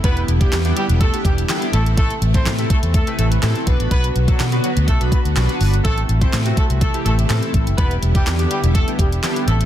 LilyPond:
<<
  \new Staff \with { instrumentName = "Analog polysynth" } { \time 4/4 \key a \dorian \tempo 4 = 124 <b d' e' g'>8 r16 <b d' e' g'>8 <b d' e' g'>8. r16 <b d' e' g'>8 r16 <b d' e' g'>8 <a c' e' a'>8~ | <a c' e' a'>8 r16 <a c' e' a'>8 <a c' e' a'>8. r16 <a c' e' b'>8 r16 <a c' e' a'>8 <b d' fis' b'>8~ | <b d' fis' b'>8 r16 <b d' fis' a'>8 <b d' fis' b'>8. r16 <b d' fis' b'>8 r16 <b d' fis' b'>8. r16 | <a c' e' a'>8 r16 <a c' e' a'>8 <a c' e' fis'>8. r16 <a c' e' g'>8 r16 <a c' e' a'>8. r16 |
<b d' e' g'>8 r16 <b d' e' g'>8 <b d' e' g'>8. r16 <b d' e' g'>8 r16 <b d' e' g'>8 <a c' e' a'>8 | }
  \new Staff \with { instrumentName = "Horn section" } { \time 4/4 \key a \dorian <b b'>8 r16 <g g'>8 r16 <g g'>16 r16 <a a'>8 <g g'>16 r8. <a a'>16 r16 | <a a'>8 r16 <c' c''>8 r16 <a a'>16 r16 <a a'>8 <a a'>16 r4 r16 | <b b'>8 r16 <fis fis'>8 r16 <fis fis'>16 r16 <a a'>8 <b b'>16 r4 r16 | <a a'>8 r16 <c' c''>8 r16 <a a'>16 r16 <a a'>8 <a a'>16 r4 r16 |
<b b'>8 r16 <g g'>8 r16 <g g'>16 r16 <a a'>8 <g g'>16 r8. <a a'>16 r16 | }
  \new Staff \with { instrumentName = "String machine" } { \clef bass \time 4/4 \key a \dorian << { e'1~ | e'2.~ e'8 fis'8~ | fis'1 | e'1~ |
e'2.~ e'8 e'8 | } \\ { <d g b>2.~ <d g b>8 <c e a>8~ | <c e a>2.~ <c e a>8 <d fis b>8~ | <d fis b>1 | <c e a>1 |
<d g b>2.~ <d g b>8 <c e a>8 | } >> }
  \new Staff \with { instrumentName = "Fingered electric bass" } { \clef bass \time 4/4 \key a \dorian e,,8 e,,8 e,8 r16 e,,8 r16 e,,8 r8 a,,8~ | a,,8 a,,8 a,8 r16 e,8 r16 a,,8 a,16 r16 b,,16 a,,16 | b,,8 b,,8 b,8 r16 d,16 b,,16 b,,16 r16 d,16 b,,16 r16 g,,8 | a,,8 a,,8 a,8 r16 c,8 r16 a,,8 a,16 r16 a,,16 fis,,16 |
e,,8 e,,8 e,8 r16 e,,8 r16 e,,8 r8 a,,8 | }
  \new DrumStaff \with { instrumentName = "Drums" } \drummode { \time 4/4 <hh bd>16 hh16 hh16 <hh bd>16 <hc hh sn>16 hh16 hh16 hh16 <hh bd>16 hh16 <hh bd>16 hh16 <hc hh sn>16 hh16 hh16 hh16 | <hh bd>16 hh16 hh16 <hh bd>16 <hc hh sn>16 hh16 <hh bd>16 hh16 <hh bd>16 hh16 hh16 hh16 <hc hh sn>16 hh16 <hh bd>16 hh16 | <hh bd>16 hh16 hh16 <hh bd>16 <hc hh sn>16 hh16 hh16 hh16 <hh bd>16 hh16 <hh bd>16 hh16 <hc hh sn>16 hh16 hho16 hh16 | <hh bd>16 hh16 hh16 <hh bd>16 <hc hh sn>16 hh16 <hh bd>16 hh16 <hh bd>16 hh16 hh16 hh16 <hc hh sn>16 hh16 <hh bd>16 hh16 |
<hh bd>16 hh16 hh16 <hh bd>16 <hc hh sn>16 hh16 hh16 hh16 <hh bd>16 hh16 <hh bd>16 hh16 <hc hh sn>16 hh16 hh16 hh16 | }
>>